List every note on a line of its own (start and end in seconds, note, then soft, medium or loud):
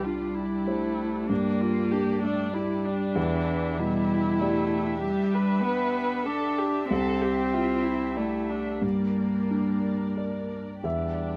0.00 1.26 C2 soft
0.00 0.67 G3 medium
0.00 3.15 D4 soft
0.00 1.26 G4 soft
0.00 1.26 D5 soft
0.04 1.05 D4 soft
0.04 0.36 F4 soft
0.34 1.29 E4 medium
0.66 1.31 A3 medium
0.66 1.26 G4 soft
0.66 1.26 C5 soft
1.28 3.12 G2 soft
1.28 2.24 A#3 medium
1.28 1.62 D4 soft
1.28 6.85 G4 soft
1.28 3.11 D5 soft
1.61 1.92 F4 medium
1.91 2.92 D4 soft
1.91 2.22 G4 soft
2.23 2.53 A3 medium
2.23 2.55 D4 medium
2.53 3.17 G3 medium
2.53 2.87 E4 soft
2.53 3.12 G4 soft
2.53 3.12 D5 soft
2.86 3.80 D4 medium
3.15 4.98 E2 medium
3.15 3.79 E3 medium
3.15 8.79 D4 soft
3.15 8.83 E5 soft
3.78 4.77 B2 soft
3.78 4.40 G3 medium
3.78 5.02 E4 medium
4.39 5.00 A3 medium
4.39 6.86 E4 soft
4.39 6.86 G4 soft
4.39 6.86 D5 soft
5.01 5.64 G3 medium
5.01 5.35 G4 medium
5.34 6.26 B4 medium
5.62 6.27 B3 medium
6.26 6.89 D4 medium
6.26 6.59 A4 medium
6.58 6.89 G4 medium
6.89 8.79 C2 medium
6.89 8.19 C4 medium
6.89 8.79 G4 soft
6.89 7.23 A4 medium
7.21 7.55 G4 medium
7.53 8.57 E4 soft
7.53 7.86 F4 soft
7.84 8.15 E4 soft
8.16 8.84 A3 medium
8.16 8.51 E4 soft
8.16 8.79 G4 soft
8.16 8.79 D5 soft
8.49 8.84 D4 soft
8.82 10.80 G2 soft
8.82 10.51 G3 soft
8.82 10.51 A#3 soft
8.82 10.81 D4 soft
8.82 10.84 A#4 soft
8.82 10.84 D5 soft
9.51 10.58 D4 soft
10.17 10.80 A#4 soft
10.17 10.80 D5 soft
10.84 11.37 E2 soft
10.84 11.37 G3 soft
10.84 11.37 D4 soft
10.84 11.37 G4 soft
10.84 11.37 D5 soft
10.84 11.37 E5 medium